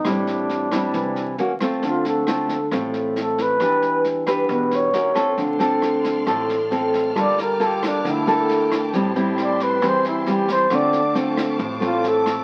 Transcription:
Already playing: muted trumpet D#4
0.05 upright bass A1, nylon-string guitar A2 G3 C4 E4, kick, cross-stick, snare
0.10 muted trumpet D4
0.27 snare
0.49 snare
0.72 nylon-string guitar G3 C4 E4, kick, cross-stick, snare
0.94 upright bass C2, nylon-string guitar E3, kick, snare
1.16 snare
1.38 upright bass D#2, nylon-string guitar A#3 C#4 F#4, snare
1.60 nylon-string guitar A3 C4 F4, kick, cross-stick, snare
1.82 upright bass D2, nylon-string guitar D3, kick, snare
1.88 muted trumpet F4
2.05 muted trumpet A4, snare
2.27 nylon-string guitar A3 C4 F4, cross-stick, snare
2.49 kick, snare
2.71 upright bass A1, nylon-string guitar A2 A3 C4 F4, kick, cross-stick, snare
2.94 snare
3.16 snare
3.21 muted trumpet A4
3.38 muted trumpet B4, kick, snare
3.60 upright bass E2, nylon-string guitar E3 D4 G4 B4, kick, cross-stick, snare
3.82 snare
4.04 snare
4.27 nylon-string guitar D4 G4 B4, kick, cross-stick, snare
4.49 upright bass E2, nylon-string guitar B2, kick, snare
4.54 muted trumpet B4
4.71 muted trumpet C#5, snare
4.93 upright bass D#2, nylon-string guitar C#4 F#4 A#4, snare
5.14 nylon-string guitar C4 F4 A4, kick, cross-stick, snare
5.37 upright bass D2, nylon-string guitar D3, string section D5 A5 C6 F6, kick, snare
5.59 nylon-string guitar C4 F4 A4, snare
5.82 cross-stick, snare
6.04 kick, snare
6.26 upright bass A1, nylon-string guitar A2 C4 F4 A4, kick, cross-stick, snare
6.50 snare
6.71 nylon-string guitar C4 F4 A4, snare
6.94 kick, snare
7.15 upright bass G1, nylon-string guitar G3 A#3 F4 A4, string section G5 D6, kick, cross-stick, snare
7.21 muted trumpet D5
7.38 muted trumpet A#4, snare
7.60 nylon-string guitar A#3 F4 A4, snare
7.66 muted trumpet G4
7.83 muted trumpet D4, kick, cross-stick, snare
8.04 upright bass D2, nylon-string guitar D3, kick, snare
8.10 muted trumpet E4
8.27 nylon-string guitar A#3 A4, snare
8.49 snare
8.71 kick, cross-stick, snare
8.93 upright bass A1, nylon-string guitar A2 G3 C4 E4, string section E5 C6, kick, snare
9.15 nylon-string guitar G3 C4 E4, snare
9.38 cross-stick, snare
9.43 muted trumpet D5
9.60 muted trumpet B4, kick, snare
9.82 upright bass E2, nylon-string guitar E3 G3 C4 E4, kick, cross-stick, snare
9.87 muted trumpet C5
10.04 muted trumpet E4, snare
10.26 nylon-string guitar G3 C4 E4, snare
10.31 muted trumpet G4
10.48 muted trumpet C5, kick, snare
10.69 upright bass D2, nylon-string guitar D3 A3 C4 F4, string section C5 F5 A5 D6, kick, cross-stick, snare
10.75 muted trumpet D5
10.93 snare
11.15 nylon-string guitar A3 C4 F4, snare
11.37 kick, cross-stick, snare
11.59 upright bass A1, nylon-string guitar A2, kick, snare
11.80 nylon-string guitar A3 C4 F4, muted trumpet F4, snare
12.04 snare
12.08 muted trumpet A4
12.26 kick, cross-stick, snare

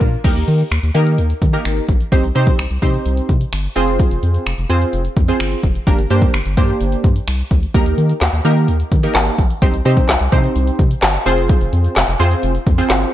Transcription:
0.01 analog synth bass A#2, kick
0.24 analog synth bass D#2, analog polysynth A#3 D#4 G4 A#4, kick, closed hi-hat, crash
0.36 analog synth bass D#2, closed hi-hat
0.48 analog synth bass D#3, closed hi-hat
0.60 closed hi-hat
0.71 analog synth bass D#2, finger snap, closed hi-hat
0.83 analog synth bass D#2, closed hi-hat
0.94 analog synth bass D#3, analog polysynth A#3 D#4 G4 A#4, closed hi-hat
1.07 closed hi-hat
1.18 analog synth bass D#2, closed hi-hat
1.30 closed hi-hat
1.42 analog synth bass D#3, kick, closed hi-hat
1.53 analog polysynth A#3 D#4 G4 A#4, closed hi-hat
1.65 analog synth bass G#1, finger snap, closed hi-hat
1.77 closed hi-hat
1.89 analog synth bass A#1, kick, closed hi-hat
2.01 closed hi-hat
2.12 analog synth bass C2, analog polysynth C4 D#4 G4 C5, kick, closed hi-hat
2.24 analog synth bass C2, closed hi-hat
2.35 analog synth bass C3, analog polysynth C4 D#4 G4 C5, closed hi-hat
2.47 kick, closed hi-hat
2.59 analog synth bass C2, finger snap, closed hi-hat
2.71 analog synth bass C2, closed hi-hat
2.82 analog synth bass C3, analog polysynth C4 D#4 G4 C5, kick, closed hi-hat
2.94 closed hi-hat
3.06 analog synth bass C2, closed hi-hat
3.17 closed hi-hat
3.29 analog synth bass C3, kick, closed hi-hat
3.41 closed hi-hat
3.53 analog synth bass G1, finger snap, closed hi-hat
3.64 closed hi-hat
3.76 analog synth bass F1, analog polysynth C4 F4 G#4 C5, closed hi-hat
3.88 closed hi-hat
3.99 kick, closed hi-hat
4.11 analog synth bass F1, closed hi-hat
4.23 analog synth bass F2, closed hi-hat
4.34 closed hi-hat
4.46 analog synth bass F1, finger snap, closed hi-hat
4.58 analog synth bass F1, closed hi-hat
4.69 analog synth bass F2, analog polysynth C4 F4 G#4 C5, closed hi-hat
4.82 closed hi-hat
4.93 analog synth bass F1, closed hi-hat
5.05 closed hi-hat
5.17 analog synth bass F2, kick, closed hi-hat
5.28 analog polysynth C4 F4 G#4 C5, closed hi-hat
5.40 analog synth bass G1, finger snap, closed hi-hat
5.52 closed hi-hat
5.63 analog synth bass F1, kick, closed hi-hat
5.75 closed hi-hat
5.87 analog synth bass G1, analog polysynth A#3 D4 G4 A#4, kick, closed hi-hat
5.99 analog synth bass G1, closed hi-hat
6.10 analog synth bass G2, analog polysynth A#3 D4 G4 C5, closed hi-hat
6.22 kick, closed hi-hat
6.34 analog synth bass G1, finger snap, closed hi-hat
6.46 analog synth bass G1, closed hi-hat
6.57 analog synth bass G2, analog polysynth A#3 D4 G4 C5, kick, closed hi-hat
6.69 closed hi-hat
6.81 analog synth bass G1, closed hi-hat
6.92 closed hi-hat
7.04 analog synth bass G2, kick, closed hi-hat
7.16 closed hi-hat
7.28 analog synth bass C2, finger snap, closed hi-hat
7.39 closed hi-hat
7.51 analog synth bass D2, kick, closed hi-hat
7.63 closed hi-hat
7.74 analog synth bass D#2, analog polysynth A#3 D#4 G4 A#4, kick, closed hi-hat
7.86 analog synth bass D#2, closed hi-hat
7.98 analog synth bass D#3, closed hi-hat
8.10 closed hi-hat
8.21 analog synth bass D#2, snare, clap, closed hi-hat
8.33 analog synth bass D#2, closed hi-hat
8.45 analog synth bass D#3, analog polysynth A#3 D#4 G4 A#4, closed hi-hat
8.57 closed hi-hat
8.68 analog synth bass D#2, closed hi-hat
8.80 closed hi-hat
8.92 analog synth bass D#3, kick, closed hi-hat
9.03 analog polysynth A#3 D#4 G4 A#4, closed hi-hat
9.15 analog synth bass G#1, snare, clap, closed hi-hat
9.27 closed hi-hat
9.38 analog synth bass A#1, kick, closed hi-hat
9.50 closed hi-hat
9.62 analog synth bass C2, analog polysynth C4 D#4 G4 C5, kick, closed hi-hat
9.74 analog synth bass C2, closed hi-hat
9.85 analog synth bass C3, analog polysynth C4 D#4 G4 C5, closed hi-hat
9.97 kick, closed hi-hat
10.09 analog synth bass C2, snare, clap, closed hi-hat
10.21 analog synth bass C2, closed hi-hat
10.32 analog synth bass C3, analog polysynth C4 D#4 G4 C5, kick, closed hi-hat
10.44 closed hi-hat
10.56 analog synth bass C2, closed hi-hat
10.67 closed hi-hat
10.79 analog synth bass C3, kick, closed hi-hat
10.91 closed hi-hat
11.02 analog synth bass G1, snare, clap, closed hi-hat
11.14 closed hi-hat
11.26 analog synth bass F1, analog polysynth C4 F4 G#4 C5, closed hi-hat
11.38 closed hi-hat
11.49 kick, closed hi-hat
11.61 analog synth bass F1, closed hi-hat
11.73 analog synth bass F2, closed hi-hat
11.84 closed hi-hat
11.96 analog synth bass F1, snare, clap, closed hi-hat
12.08 analog synth bass F1, closed hi-hat
12.19 analog synth bass F2, analog polysynth C4 F4 G#4 C5, closed hi-hat
12.31 closed hi-hat
12.43 analog synth bass F1, closed hi-hat
12.55 closed hi-hat
12.67 analog synth bass F2, kick, closed hi-hat
12.78 analog polysynth C4 F4 G#4 C5, closed hi-hat
12.90 analog synth bass G1, snare, clap, closed hi-hat
13.02 closed hi-hat

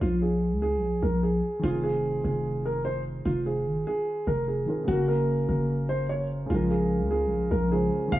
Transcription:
0.01 808-style bass A#1, grand piano F4
0.22 grand piano G#4
0.52 808-style bass C#2
0.62 grand piano G#4
0.77 808-style bass A#1
1.02 808-style bass A#1, grand piano A#4
1.23 grand piano G#4
1.59 grand piano D#3 C4
1.63 808-style bass F1, grand piano F4
1.68 grand piano G#4
1.84 grand piano G#4
2.24 808-style bass F1, grand piano G#4
2.65 grand piano A#4
2.85 grand piano C5
3.25 808-style bass F1, grand piano F4
3.46 grand piano G#4
3.66 808-style bass G#1
3.87 grand piano G#4
4.27 808-style bass F1, grand piano A#4
4.48 grand piano G#4
4.66 grand piano D#3 C4 F4
4.70 grand piano A#4
4.84 grand piano C#3 A#3
4.88 808-style bass F#1, grand piano F#4
4.92 grand piano A#4
5.08 grand piano A#4
5.49 808-style bass F#1, grand piano A#4
5.89 grand piano C5
6.09 grand piano C#5
6.46 808-style bass A#1, grand piano C#3 G#3 F4
6.52 grand piano F4 A#4
6.71 grand piano G#4
7.01 808-style bass C#2
7.11 grand piano G#4
7.26 808-style bass A#1
7.51 808-style bass A#1, grand piano A#4
7.70 grand piano C#3 G#3 F4 G#4
7.74 grand piano C5
8.08 grand piano D#3 C4
8.12 808-style bass F1, grand piano F4 F5
8.16 grand piano G#4

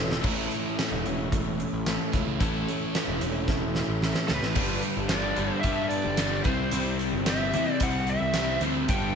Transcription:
Already playing: picked electric bass E1, overdriven electric guitar A2, tonewheel organ E3 A3 C#4 F4 A4, steel-string acoustic guitar E3 A3 C#4 E4
0.00 overdriven electric guitar E3
0.11 snare
0.22 picked electric bass A1, steel-string acoustic guitar A2, overdriven electric guitar A2 E3, tonewheel organ A3 C#4 E4 A4, kick, crash
0.26 steel-string acoustic guitar E3 A3 C#4 E4, overdriven electric guitar E3 A3 C#4 E4 A4
0.51 steel-string acoustic guitar A3 C#4 E4, closed hi-hat
0.79 steel-string acoustic guitar E3 A3 C#4 E4, snare, closed hi-hat, tambourine
0.91 picked electric bass E1
1.05 picked electric bass E1, steel-string acoustic guitar A3 C#4 E4, closed hi-hat
1.32 kick, closed hi-hat
1.58 steel-string acoustic guitar A3 C#4 E4, closed hi-hat
1.73 picked electric bass A1
1.86 steel-string acoustic guitar E3 A3 C#4 E4, snare, closed hi-hat, tambourine
2.12 picked electric bass C#2, overdriven electric guitar A2 E3 A3 C#4 E4 A4, kick, snare, closed hi-hat
2.27 picked electric bass C#2
2.39 picked electric bass A1, overdriven electric guitar A2 E3 A3 C#4 E4 A4, steel-string acoustic guitar A2 E3 A3 C#4 E4, kick, closed hi-hat
2.65 steel-string acoustic guitar A3 C#4 E4, closed hi-hat
2.94 steel-string acoustic guitar E3 A3 C#4 E4, snare, closed hi-hat, tambourine
3.08 picked electric bass E1
3.20 picked electric bass E1, steel-string acoustic guitar A3 C#4 E4, closed hi-hat
3.48 kick, snare
3.75 steel-string acoustic guitar A3 C#4 E4, snare
3.88 picked electric bass A1
4.02 steel-string acoustic guitar E3 A3 C#4 E4, snare
4.15 snare
4.27 picked electric bass C#2, overdriven electric guitar A2 E3 A3 C#4 E4 A4, lead electric guitar B4, snare
4.42 picked electric bass A1, snare
4.54 picked electric bass G1, overdriven electric guitar G2 D3 G3, steel-string acoustic guitar G2 D3 G3 B3 D4, tonewheel organ B3 D4 G4 B4, kick, crash
4.58 steel-string acoustic guitar G4
4.82 steel-string acoustic guitar G3 B3 D4 G4, closed hi-hat
4.97 picked electric bass G1
5.08 overdriven electric guitar G2 D3 G3, steel-string acoustic guitar G3 B3 D4, lead electric guitar D5, snare, closed hi-hat, tambourine
5.12 steel-string acoustic guitar G4
5.36 picked electric bass G1, overdriven electric guitar G2 D3 G3, steel-string acoustic guitar G3 B3 D4 G4, closed hi-hat
5.61 overdriven electric guitar G2 D3 G3, picked electric bass G2, steel-string acoustic guitar G2 D3, lead electric guitar E5, kick, closed hi-hat
5.65 steel-string acoustic guitar G3 B3 D4 G4
5.89 lead electric guitar D5, closed hi-hat
6.04 picked electric bass G1
6.17 overdriven electric guitar G2 D3 G3, steel-string acoustic guitar B3 D4 G4, snare, closed hi-hat, tambourine
6.44 picked electric bass C2, overdriven electric guitar C3 G3 C4, steel-string acoustic guitar C3 E3 G3 E4 G4, tonewheel organ C4 E4 G4 C5, lead electric guitar C5, kick, closed hi-hat
6.71 picked electric bass C2, overdriven electric guitar C3 G3 C4, closed hi-hat
6.99 steel-string acoustic guitar G3 E4 G4, closed hi-hat
7.12 picked electric bass G1
7.26 overdriven electric guitar C3 G3 C4, steel-string acoustic guitar E3 G3 E4 G4, lead electric guitar E5, snare, closed hi-hat, tambourine
7.53 picked electric bass E2, overdriven electric guitar C3 G3 C4, closed hi-hat
7.72 lead electric guitar D5
7.80 picked electric bass C2, overdriven electric guitar C3 G3 C4, steel-string acoustic guitar C3 E3 G3 E4 G4, lead electric guitar F#5, kick, closed hi-hat
8.07 lead electric guitar E5, closed hi-hat
8.21 picked electric bass C2
8.33 overdriven electric guitar C3 G3 C4, steel-string acoustic guitar E3 G3 E4 G4, snare, closed hi-hat, tambourine
8.61 picked electric bass D2, overdriven electric guitar C3 G3 C4, closed hi-hat
8.88 picked electric bass G1, overdriven electric guitar G2 D3 G3, steel-string acoustic guitar G2 D3 G3 B3 D4 G4, tonewheel organ B3 D4 G4 B4, lead electric guitar G5, kick, closed hi-hat

